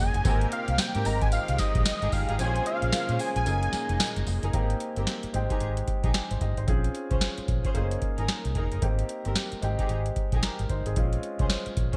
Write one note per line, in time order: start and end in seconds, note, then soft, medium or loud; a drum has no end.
0.00 0.10 F1 medium
0.00 0.24 A#2 medium
0.00 0.22 G#3 medium
0.00 0.23 A#3 medium
0.00 0.23 C#4 medium
0.00 0.24 D#4 medium
0.00 0.24 G#4 medium
0.00 0.49 G#5 loud
0.14 0.22 F#1 medium
0.14 closed hi-hat medium
0.25 0.45 G#1 loud
0.25 1.05 C3 medium
0.25 1.05 A#3 medium
0.25 0.50 C4 loud
0.25 1.04 C4 medium
0.25 1.05 D#4 medium
0.25 0.50 G4 medium
0.25 2.37 G4 medium
0.25 1.06 G4 medium
0.25 0.50 A#4 loud
0.25 kick loud
0.25 closed hi-hat medium
0.25 tambourine medium
0.41 closed hi-hat medium
0.52 0.81 F5 loud
0.52 closed hi-hat medium
0.68 0.76 C2 loud
0.68 closed hi-hat medium
0.78 1.07 G5 loud
0.78 snare loud
0.78 closed hi-hat medium
0.78 tambourine medium
0.95 1.03 G#2 medium
0.95 1.07 C4 medium
0.95 1.08 G4 medium
0.95 1.08 A#4 medium
0.95 closed hi-hat medium
1.05 1.37 G#1 medium
1.05 2.38 D#3 medium
1.05 2.36 G#3 medium
1.05 4.50 G#3 medium
1.05 2.37 C4 medium
1.05 2.37 D#4 medium
1.05 2.38 G4 medium
1.05 1.22 A#5 loud
1.05 open hi-hat medium
1.05 tambourine medium
1.22 1.27 G#5 medium
1.22 kick loud
1.22 closed hi-hat medium
1.32 1.61 F5 loud
1.32 closed hi-hat medium
1.32 tambourine medium
1.48 1.56 C2 loud
1.48 closed hi-hat medium
1.58 1.85 D#5 medium
1.58 kick medium
1.58 snare medium
1.58 closed hi-hat medium
1.58 tambourine medium
1.75 1.83 A#1 medium
1.75 kick medium
1.75 closed hi-hat soft
1.85 2.14 D#5 loud
1.85 snare loud
1.85 closed hi-hat medium
1.85 tambourine loud
2.02 2.10 G#1 medium
2.02 2.15 D#4 medium
2.02 2.15 G4 medium
2.02 2.15 G#4 medium
2.02 closed hi-hat medium
2.12 2.24 G1 medium
2.12 2.39 F5 loud
2.12 kick medium
2.12 open hi-hat medium
2.12 tambourine medium
2.29 2.37 G#1 medium
2.29 2.41 D#4 medium
2.29 2.42 G4 medium
2.29 2.38 G#4 medium
2.29 closed hi-hat medium
2.39 2.59 A#1 loud
2.39 3.45 C#3 medium
2.39 3.46 A#3 medium
2.39 3.44 C4 medium
2.39 2.64 C#4 loud
2.39 3.44 C#4 medium
2.39 3.45 F4 medium
2.39 2.48 G4 medium
2.39 2.65 G#4 loud
2.39 2.65 C5 loud
2.39 2.64 G#5 loud
2.39 closed hi-hat medium
2.39 tambourine medium
2.47 3.47 G#4 medium
2.56 closed hi-hat medium
2.66 3.22 F5 loud
2.66 closed hi-hat medium
2.82 2.90 A#1 medium
2.82 closed hi-hat medium
2.92 snare loud
2.92 closed hi-hat medium
2.92 tambourine medium
3.09 3.17 A#2 medium
3.09 3.22 C#4 medium
3.09 3.22 G#4 medium
3.09 3.22 C5 medium
3.09 closed hi-hat medium
3.19 3.36 G#5 loud
3.19 open hi-hat medium
3.19 tambourine medium
3.36 3.44 A#1 medium
3.36 4.13 G#5 medium
3.36 closed hi-hat medium
3.46 3.66 F#1 loud
3.46 4.53 A#2 medium
3.46 4.51 A#3 medium
3.46 4.52 C#4 medium
3.46 4.53 D#4 medium
3.46 4.52 D#4 medium
3.46 4.52 G#4 medium
3.46 closed hi-hat medium
3.46 tambourine medium
3.63 closed hi-hat medium
3.73 muted fingered electric bass stroke medium
3.73 snare medium
3.73 closed hi-hat medium
3.73 tambourine medium
3.89 3.97 F1 medium
3.89 closed hi-hat medium
4.00 snare loud
4.00 closed hi-hat medium
4.00 tambourine loud
4.16 4.24 F#1 medium
4.16 closed hi-hat medium
4.27 4.39 F1 medium
4.27 open hi-hat medium
4.27 tambourine medium
4.43 4.51 F#1 medium
4.43 4.56 D#4 medium
4.43 4.56 G#4 medium
4.43 4.56 A#4 medium
4.43 closed hi-hat medium
4.53 5.34 A#3 medium
4.53 5.33 C4 medium
4.53 5.33 D#4 medium
4.53 5.34 G4 medium
4.53 kick loud
4.53 closed hi-hat medium
4.70 closed hi-hat medium
4.80 closed hi-hat medium
4.96 5.05 G1 medium
4.96 5.09 C4 medium
4.96 5.09 G4 medium
4.96 5.10 A#4 medium
4.96 closed hi-hat soft
5.07 snare loud
5.07 closed hi-hat medium
5.23 muted fingered electric bass stroke soft
5.23 closed hi-hat medium
5.33 5.46 G#1 medium
5.33 6.65 G#3 medium
5.33 6.65 C4 medium
5.33 6.13 D#4 medium
5.33 6.14 G4 medium
5.33 closed hi-hat medium
5.50 5.63 D#4 medium
5.50 5.63 G4 medium
5.50 5.63 G#4 medium
5.50 kick medium
5.50 closed hi-hat soft
5.60 5.81 G#1 medium
5.60 closed hi-hat medium
5.77 closed hi-hat medium
5.88 kick medium
5.88 closed hi-hat medium
6.04 6.12 A#1 medium
6.04 6.16 D#4 medium
6.04 6.17 G4 medium
6.04 6.17 G#4 medium
6.04 kick medium
6.04 closed hi-hat soft
6.14 snare loud
6.14 closed hi-hat medium
6.31 6.39 G#1 medium
6.31 6.41 D#4 medium
6.31 6.41 C5 medium
6.31 closed hi-hat medium
6.41 6.53 G1 medium
6.41 6.57 G4 medium
6.41 6.57 D#5 medium
6.41 kick medium
6.41 closed hi-hat medium
6.57 6.65 G#1 medium
6.57 6.83 D#4 medium
6.57 6.83 C5 medium
6.57 closed hi-hat medium
6.67 6.88 A#1 loud
6.67 7.73 C4 medium
6.67 7.73 C#4 medium
6.67 7.73 F4 medium
6.67 7.74 G#4 medium
6.67 kick loud
6.67 closed hi-hat medium
6.84 closed hi-hat medium
6.95 closed hi-hat medium
7.11 7.19 C2 medium
7.11 7.24 C#4 medium
7.11 7.24 G#4 medium
7.11 7.24 C5 medium
7.11 kick medium
7.11 closed hi-hat soft
7.21 snare medium
7.21 closed hi-hat medium
7.38 muted fingered electric bass stroke soft
7.38 closed hi-hat medium
7.48 7.60 A#1 medium
7.48 kick medium
7.48 closed hi-hat medium
7.64 7.77 C#4 medium
7.64 7.77 G#4 medium
7.64 7.77 C5 medium
7.64 kick medium
7.64 closed hi-hat soft
7.74 7.95 F#1 loud
7.74 8.80 A#3 medium
7.74 8.80 C#4 medium
7.74 8.81 D#4 medium
7.74 8.81 G#4 medium
7.74 closed hi-hat medium
7.91 closed hi-hat medium
8.02 kick medium
8.02 closed hi-hat medium
8.18 8.26 G#1 medium
8.18 8.31 D#4 medium
8.18 8.31 G#4 medium
8.18 8.31 A#4 medium
8.18 closed hi-hat soft
8.28 snare loud
8.28 closed hi-hat medium
8.45 8.53 C2 medium
8.45 closed hi-hat medium
8.55 8.67 F1 medium
8.55 8.73 D#4 medium
8.55 8.73 G#4 medium
8.55 8.73 A#4 medium
8.55 kick medium
8.55 closed hi-hat medium
8.72 8.80 F#1 medium
8.72 closed hi-hat soft
8.82 9.02 G#1 loud
8.82 9.62 A#3 medium
8.82 9.61 C4 medium
8.82 9.62 D#4 medium
8.82 9.63 G4 medium
8.82 kick loud
8.82 closed hi-hat medium
8.99 closed hi-hat medium
9.09 closed hi-hat medium
9.25 9.33 G1 medium
9.25 9.38 C4 medium
9.25 9.38 G4 medium
9.25 9.38 A#4 medium
9.25 closed hi-hat soft
9.35 snare loud
9.35 closed hi-hat medium
9.52 muted fingered electric bass stroke soft
9.52 closed hi-hat medium
9.62 9.75 G#1 medium
9.62 10.93 G#3 medium
9.62 10.41 C4 medium
9.62 10.42 D#4 medium
9.62 10.42 G4 medium
9.62 closed hi-hat medium
9.79 9.91 D#4 medium
9.79 9.92 G4 medium
9.79 9.92 G#4 medium
9.79 kick medium
9.79 closed hi-hat soft
9.89 10.09 G#1 medium
9.89 closed hi-hat medium
10.06 closed hi-hat medium
10.16 kick medium
10.16 closed hi-hat medium
10.32 10.40 A#1 medium
10.32 10.45 D#4 medium
10.32 10.45 G4 medium
10.32 10.45 G#4 medium
10.32 kick medium
10.32 closed hi-hat soft
10.43 10.69 A#4 medium
10.43 snare loud
10.43 closed hi-hat medium
10.59 10.67 G#1 medium
10.59 closed hi-hat medium
10.69 10.82 G1 medium
10.69 10.86 D#4 medium
10.69 10.85 C5 medium
10.69 kick medium
10.69 closed hi-hat medium
10.86 10.94 G#1 medium
10.86 10.95 C4 medium
10.86 11.12 G#4 medium
10.86 closed hi-hat medium
10.96 11.16 A#1 loud
10.96 11.97 G#3 medium
10.96 11.97 C4 medium
10.96 11.97 C#4 medium
10.96 11.97 F4 medium
10.96 kick loud
10.96 closed hi-hat medium
11.13 closed hi-hat medium
11.23 closed hi-hat medium
11.39 11.47 C2 medium
11.39 11.52 C#4 medium
11.39 11.52 G#4 medium
11.39 11.52 C5 medium
11.39 kick medium
11.39 closed hi-hat soft
11.50 snare loud
11.50 closed hi-hat medium
11.66 muted fingered electric bass stroke soft
11.66 closed hi-hat medium
11.77 11.89 A#1 medium
11.77 kick medium
11.77 closed hi-hat medium
11.93 11.97 C#4 medium
11.93 11.97 G#4 medium
11.93 11.97 C5 medium
11.93 kick medium
11.93 closed hi-hat soft